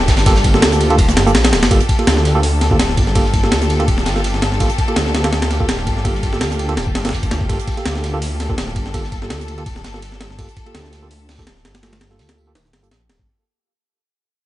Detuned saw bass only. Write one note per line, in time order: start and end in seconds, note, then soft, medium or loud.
0.08 0.64 G1 medium
0.63 1.00 D2 medium
0.99 1.18 D1 medium
1.17 1.36 G1 medium
1.35 1.54 A#1 loud
1.53 1.64 D1 medium
1.63 1.70 G1 medium
1.71 1.80 G1 medium
2.07 2.78 D2 medium
2.79 2.99 D1 medium
2.98 3.53 G1 medium
3.52 3.90 D2 medium
3.88 4.08 D1 medium
4.06 4.50 G1 medium
4.52 4.59 G1 loud
4.60 4.69 G1 medium
4.97 5.67 D2 medium
5.69 5.88 D1 medium
5.87 6.43 G1 medium
6.41 6.79 D2 medium
6.77 6.97 D1 medium
6.95 7.31 G1 medium
7.31 7.40 D2 medium
7.41 7.49 F1 medium
7.50 7.58 G1 medium
7.86 8.57 D2 medium
8.58 8.78 D1 medium
8.76 9.32 G1 medium
9.30 9.68 D2 medium
9.66 9.86 D1 medium
9.85 10.29 G1 medium
10.30 10.38 G1 loud
10.39 10.47 G1 medium
10.75 11.46 D2 medium
11.47 11.67 D1 medium
11.65 12.21 G1 medium
12.19 12.57 D2 medium
12.55 12.75 D1 medium
12.73 12.93 G1 medium
12.91 13.11 A#1 loud
13.09 13.21 D1 medium
13.19 13.27 G1 medium